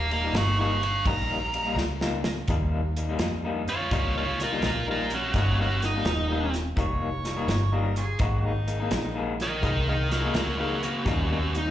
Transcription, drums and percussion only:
0.11 ride medium
0.34 snare loud
0.34 ride medium
0.83 ride medium
1.06 kick loud
1.06 ride medium
1.54 ride medium
1.78 snare medium
2.01 snare medium
2.24 snare loud
2.48 kick loud
2.48 closed hi-hat medium
2.97 closed hi-hat medium
3.19 snare loud
3.19 closed hi-hat medium
3.68 closed hi-hat medium
3.91 kick loud
3.91 closed hi-hat medium
4.40 snare soft
4.40 closed hi-hat medium
4.62 snare loud
4.62 closed hi-hat medium
5.10 closed hi-hat medium
5.34 kick loud
5.34 snare soft
5.34 closed hi-hat medium
5.82 snare soft
5.82 closed hi-hat medium
6.05 snare loud
6.05 closed hi-hat medium
6.54 snare soft
6.54 closed hi-hat medium
6.77 kick loud
6.77 closed hi-hat medium
7.25 snare soft
7.25 closed hi-hat medium
7.48 snare loud
7.48 closed hi-hat medium
7.96 closed hi-hat medium
8.19 kick loud
8.19 closed hi-hat medium
8.68 closed hi-hat medium
8.91 snare loud
8.91 closed hi-hat medium
9.40 snare soft
9.40 closed hi-hat medium
9.63 kick loud
9.63 closed hi-hat medium
10.12 snare soft
10.12 closed hi-hat medium
10.34 snare loud
10.34 closed hi-hat medium
10.83 closed hi-hat medium
11.06 kick loud
11.06 snare soft
11.06 closed hi-hat medium
11.55 closed hi-hat medium

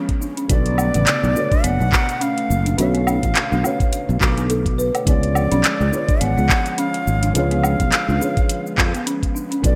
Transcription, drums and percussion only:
0.09 kick medium
0.09 closed hi-hat soft
0.22 shaker medium
0.37 closed hi-hat soft
0.37 shaker soft
0.50 kick loud
0.50 closed hi-hat medium
0.50 shaker soft
0.66 closed hi-hat soft
0.78 low woodblock medium
0.78 shaker medium
0.94 closed hi-hat soft
0.94 shaker soft
1.07 clap medium
1.07 closed hi-hat medium
1.07 shaker soft
1.24 shaker soft
1.36 shaker medium
1.52 kick loud
1.52 closed hi-hat soft
1.52 shaker soft
1.64 closed hi-hat medium
1.64 shaker soft
1.81 shaker soft
1.93 kick loud
1.93 clap medium
1.93 shaker medium
2.09 closed hi-hat soft
2.09 shaker soft
2.21 closed hi-hat medium
2.21 shaker soft
2.38 closed hi-hat soft
2.51 shaker medium
2.66 closed hi-hat soft
2.66 shaker soft
2.78 closed hi-hat medium
2.78 shaker soft
2.95 closed hi-hat soft
3.07 low woodblock medium
3.07 shaker medium
3.23 kick medium
3.23 closed hi-hat soft
3.23 shaker soft
3.35 clap medium
3.35 closed hi-hat medium
3.35 shaker soft
3.52 shaker soft
3.64 low woodblock medium
3.64 shaker medium
3.80 kick loud
3.80 closed hi-hat soft
3.80 shaker soft
3.93 closed hi-hat medium
3.93 shaker soft
4.10 shaker soft
4.21 kick loud
4.21 clap medium
4.21 shaker medium
4.38 closed hi-hat soft
4.38 shaker soft
4.50 closed hi-hat medium
4.50 shaker soft
4.66 kick medium
4.66 closed hi-hat soft
4.79 shaker medium
4.95 closed hi-hat soft
4.95 low woodblock medium
4.95 shaker soft
5.07 kick loud
5.07 closed hi-hat medium
5.07 shaker soft
5.23 closed hi-hat soft
5.35 low woodblock medium
5.35 shaker medium
5.52 closed hi-hat soft
5.52 shaker soft
5.64 clap medium
5.64 closed hi-hat medium
5.64 shaker soft
5.81 shaker soft
5.93 shaker medium
6.09 kick loud
6.09 closed hi-hat soft
6.09 shaker soft
6.21 closed hi-hat medium
6.21 shaker soft
6.38 shaker soft
6.49 kick loud
6.49 clap medium
6.49 shaker medium
6.66 closed hi-hat soft
6.66 shaker soft
6.78 closed hi-hat medium
6.78 shaker soft
6.94 closed hi-hat soft
7.07 shaker medium
7.23 closed hi-hat soft
7.23 shaker soft
7.35 closed hi-hat medium
7.35 shaker soft
7.51 closed hi-hat soft
7.64 low woodblock medium
7.64 shaker medium
7.80 kick medium
7.80 closed hi-hat soft
7.80 shaker soft
7.92 clap medium
7.92 closed hi-hat medium
7.92 shaker soft
8.09 shaker soft
8.22 shaker medium
8.37 kick loud
8.37 closed hi-hat soft
8.37 shaker soft
8.49 closed hi-hat medium
8.49 shaker soft
8.67 shaker soft
8.78 kick loud
8.78 clap medium
8.78 shaker medium
8.94 closed hi-hat soft
8.94 shaker soft
9.07 closed hi-hat medium
9.07 shaker soft
9.23 kick medium
9.23 closed hi-hat soft
9.36 shaker medium
9.52 closed hi-hat soft
9.52 shaker soft
9.64 kick loud
9.64 closed hi-hat medium
9.64 shaker soft

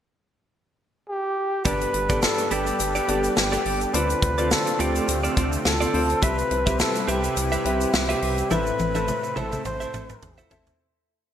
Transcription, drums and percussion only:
1.65 kick loud
1.65 closed hi-hat medium
1.65 shaker medium
1.81 closed hi-hat medium
1.81 shaker soft
1.94 closed hi-hat medium
2.09 kick medium
2.09 closed hi-hat medium
2.09 shaker soft
2.22 snare loud
2.22 shaker medium
2.38 closed hi-hat medium
2.38 shaker soft
2.51 closed hi-hat medium
2.51 shaker soft
2.67 closed hi-hat soft
2.67 shaker medium
2.79 closed hi-hat medium
2.79 shaker medium
2.95 closed hi-hat soft
2.95 shaker medium
3.08 closed hi-hat medium
3.24 closed hi-hat soft
3.24 shaker soft
3.37 snare loud
3.37 shaker medium
3.53 closed hi-hat soft
3.53 shaker soft
3.65 open hi-hat medium
3.81 closed hi-hat soft
3.81 shaker soft
3.94 closed hi-hat medium
3.94 shaker medium
4.10 closed hi-hat soft
4.10 shaker soft
4.22 kick medium
4.22 closed hi-hat medium
4.38 closed hi-hat soft
4.38 shaker soft
4.51 snare loud
4.51 shaker medium
4.67 closed hi-hat medium
4.67 shaker soft
4.80 closed hi-hat medium
4.80 shaker soft
4.95 closed hi-hat soft
4.95 shaker medium
5.08 closed hi-hat medium
5.08 shaker medium
5.24 closed hi-hat medium
5.24 shaker medium
5.37 kick medium
5.37 closed hi-hat medium
5.52 closed hi-hat soft
5.52 shaker medium
5.65 snare loud
5.65 shaker medium
5.81 closed hi-hat soft
5.81 shaker soft
5.94 open hi-hat medium
6.10 closed hi-hat soft
6.10 shaker soft
6.22 kick loud
6.22 closed hi-hat medium
6.22 shaker medium
6.38 closed hi-hat medium
6.38 shaker soft
6.51 closed hi-hat medium
6.67 kick medium
6.67 closed hi-hat medium
6.67 shaker soft
6.80 snare loud
6.80 shaker medium
6.95 closed hi-hat medium
6.95 shaker medium
7.08 closed hi-hat medium
7.08 shaker soft
7.24 closed hi-hat soft
7.24 shaker medium
7.37 closed hi-hat medium
7.37 shaker medium
7.52 closed hi-hat soft
7.52 shaker medium
7.65 closed hi-hat medium
7.81 closed hi-hat soft
7.81 shaker medium
7.94 snare loud
7.94 shaker medium
8.10 closed hi-hat soft
8.10 shaker soft
8.22 open hi-hat medium
8.38 closed hi-hat soft
8.38 shaker soft
8.51 high tom medium
8.51 shaker medium
8.67 shaker soft
8.79 high tom medium
8.79 shaker soft
8.95 high tom medium
8.95 shaker soft
9.08 mid tom medium
9.08 shaker medium
9.24 shaker soft
9.36 mid tom medium
9.36 shaker soft
9.52 mid tom medium
9.52 shaker medium
9.65 mid tom medium
9.65 shaker medium
9.81 shaker medium
9.94 mid tom medium
9.94 shaker medium
10.09 mid tom medium
10.09 shaker medium
10.22 floor tom loud
10.22 shaker medium
10.38 shaker soft
10.51 floor tom loud
10.51 shaker medium
10.67 floor tom medium
10.67 shaker soft

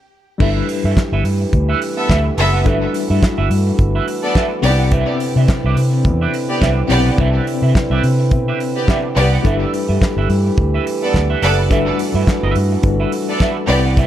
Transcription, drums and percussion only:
0.40 kick loud
0.40 crash loud
0.69 open hi-hat medium
0.97 kick loud
0.97 snare loud
0.97 clap loud
0.97 closed hi-hat medium
1.25 open hi-hat medium
1.53 kick loud
1.53 closed hi-hat medium
1.82 open hi-hat medium
2.10 kick loud
2.10 snare loud
2.10 clap medium
2.10 closed hi-hat medium
2.38 open hi-hat medium
2.66 kick loud
2.66 closed hi-hat medium
2.94 open hi-hat medium
3.23 kick loud
3.23 snare loud
3.23 clap loud
3.23 closed hi-hat medium
3.51 open hi-hat medium
3.79 kick loud
3.79 closed hi-hat medium
4.08 open hi-hat medium
4.35 kick loud
4.35 snare loud
4.35 clap medium
4.35 closed hi-hat medium
4.64 open hi-hat medium
4.92 kick loud
4.92 closed hi-hat medium
5.20 open hi-hat medium
5.48 kick loud
5.48 snare loud
5.48 clap loud
5.48 closed hi-hat medium
5.77 open hi-hat medium
6.05 kick loud
6.05 closed hi-hat medium
6.34 open hi-hat medium
6.62 kick loud
6.62 snare loud
6.62 clap loud
6.62 closed hi-hat medium
6.90 snare soft
6.90 open hi-hat medium
7.18 kick loud
7.18 closed hi-hat medium
7.47 open hi-hat medium
7.75 kick loud
7.75 snare loud
7.75 clap loud
7.75 closed hi-hat medium
8.04 open hi-hat medium
8.31 kick loud
8.31 closed hi-hat medium
8.60 open hi-hat medium
8.88 kick loud
8.88 snare loud
8.88 clap medium
8.88 closed hi-hat medium
9.17 open hi-hat medium
9.45 kick loud
9.45 closed hi-hat medium
9.74 open hi-hat medium
10.02 kick loud
10.02 snare loud
10.02 clap loud
10.02 closed hi-hat medium
10.30 open hi-hat medium
10.58 kick loud
10.58 closed hi-hat medium
10.87 open hi-hat medium
11.14 kick loud
11.14 snare loud
11.14 clap medium
11.14 closed hi-hat medium
11.43 snare soft
11.43 open hi-hat medium
11.71 kick loud
11.71 closed hi-hat medium
11.99 open hi-hat medium
12.27 kick loud
12.27 snare loud
12.27 clap medium
12.27 closed hi-hat medium
12.56 open hi-hat medium
12.83 kick loud
12.83 closed hi-hat medium
13.12 open hi-hat medium
13.40 kick loud
13.40 snare loud
13.40 clap medium
13.40 closed hi-hat medium
13.69 open hi-hat medium
13.97 kick loud
13.97 closed hi-hat medium

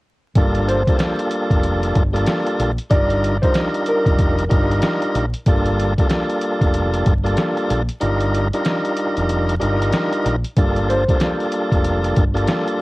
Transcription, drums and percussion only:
0.35 kick loud
0.35 closed hi-hat loud
0.55 closed hi-hat soft
0.69 closed hi-hat medium
0.87 kick medium
0.87 closed hi-hat medium
0.99 snare loud
0.99 closed hi-hat medium
1.19 closed hi-hat soft
1.31 closed hi-hat medium
1.51 kick medium
1.51 closed hi-hat soft
1.63 closed hi-hat medium
1.83 closed hi-hat medium
1.95 kick medium
1.95 closed hi-hat medium
2.16 closed hi-hat soft
2.26 snare loud
2.26 closed hi-hat medium
2.46 closed hi-hat soft
2.60 closed hi-hat medium
2.78 closed hi-hat medium
2.91 kick loud
2.91 closed hi-hat loud
3.10 closed hi-hat soft
3.24 closed hi-hat medium
3.43 kick medium
3.43 closed hi-hat medium
3.54 snare loud
3.54 closed hi-hat medium
3.74 closed hi-hat soft
3.86 closed hi-hat medium
4.06 kick medium
4.06 closed hi-hat soft
4.18 kick medium
4.18 closed hi-hat medium
4.38 closed hi-hat medium
4.51 kick medium
4.51 closed hi-hat medium
4.71 closed hi-hat soft
4.82 snare loud
4.82 closed hi-hat medium
5.02 closed hi-hat soft
5.15 closed hi-hat medium
5.34 closed hi-hat medium
5.46 kick loud
5.46 closed hi-hat loud
5.65 closed hi-hat soft
5.79 closed hi-hat medium
5.98 kick medium
5.98 closed hi-hat medium
6.10 snare loud
6.10 closed hi-hat medium
6.30 closed hi-hat soft
6.41 closed hi-hat medium
6.61 kick medium
6.61 closed hi-hat soft
6.74 closed hi-hat medium
6.94 closed hi-hat medium
7.06 kick medium
7.06 closed hi-hat medium
7.26 closed hi-hat soft
7.37 snare loud
7.37 closed hi-hat medium
7.57 closed hi-hat soft
7.70 closed hi-hat medium
7.89 closed hi-hat medium
8.01 closed hi-hat loud
8.21 closed hi-hat soft
8.35 closed hi-hat medium
8.53 closed hi-hat medium
8.65 snare loud
8.65 closed hi-hat medium
8.85 closed hi-hat soft
8.97 closed hi-hat medium
9.17 closed hi-hat soft
9.29 closed hi-hat medium
9.49 closed hi-hat medium
9.61 closed hi-hat medium
9.82 closed hi-hat soft
9.92 snare loud
9.92 closed hi-hat medium
10.12 closed hi-hat soft
10.26 closed hi-hat medium
10.44 closed hi-hat medium
10.57 kick loud
10.57 closed hi-hat loud
10.76 closed hi-hat soft
10.90 closed hi-hat medium
11.09 kick medium
11.09 closed hi-hat medium
11.20 snare loud
11.20 closed hi-hat medium
11.40 closed hi-hat soft
11.52 closed hi-hat medium
11.72 kick medium
11.72 closed hi-hat soft
11.85 closed hi-hat medium
12.04 closed hi-hat medium
12.16 kick medium
12.16 closed hi-hat medium
12.37 closed hi-hat soft
12.47 snare loud
12.47 closed hi-hat medium
12.68 closed hi-hat soft

